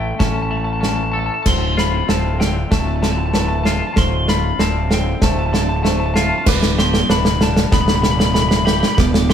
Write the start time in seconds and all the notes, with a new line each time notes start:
Already playing: A1 A2 A3 C#4 E4 A4 G5
0.19 A1 C#4 A4 A5, kick, snare
0.27 A5
0.34 A5
0.42 A5
0.51 A3 A5
0.57 A5
0.64 A5
0.73 A5
0.80 C#4 A5, snare
0.89 A5
0.96 A5
1.04 A5
1.12 A4 E5 A5
1.19 A5
1.26 A5
1.34 A5
1.42 D1 D2 C4 C5 A5, kick, snare, crash
1.46 D3 F4 C6
1.77 F4 C5 B5, snare
2.08 D1 C4 C5 A5, snare
2.40 D3 G5, snare
2.71 D1 A3 A5, kick, snare
2.80 A5
2.87 A5
2.96 A5
3.02 D3 A5, snare
3.11 A5
3.18 A5
3.26 A5
3.34 A3 B4 A5, snare
3.41 A5
3.48 A5
3.55 A5
3.64 F4 A5, snare
3.72 A5
3.79 A5
3.87 A5
3.94 D1 D2 D4 C5 A5, kick, snare
3.98 C6
4.28 F4 B5, snare
4.58 D1 C4 D5 A5, snare
4.91 D3 C5 G5, snare
5.22 D1 A3 C5 A5, kick, snare
5.32 A5
5.39 A5
5.46 A5
5.52 D3 A5, snare
5.62 A5
5.69 A5
5.76 A5
5.83 A3 C5 A5, snare
5.92 A5
6.00 A5
6.06 A5
6.14 F4 F5 A5, snare
6.21 A5
6.29 A5
6.38 A5
6.46 D1 G2 B2 G3 B4 D6, kick, snare, crash
6.63 snare
6.78 B3 G4 C6, snare
6.94 snare
7.09 D1 D4 B4 B5, snare
7.25 snare
7.41 G3 A5, snare
7.57 snare
7.72 D1 B3 B5, kick, snare
7.81 B5
7.88 B5, snare
7.95 B5
8.02 G3 B5, snare
8.11 B5
8.19 B5, snare
8.26 B5
8.34 A4 B5, snare
8.42 B5
8.49 B5, snare
8.56 B5
8.65 G4 B5, snare
8.73 B5
8.80 B5, snare
8.88 B5
8.95 D1 G2 B3 B5, kick, snare
9.00 D6
9.14 snare
9.29 G4, snare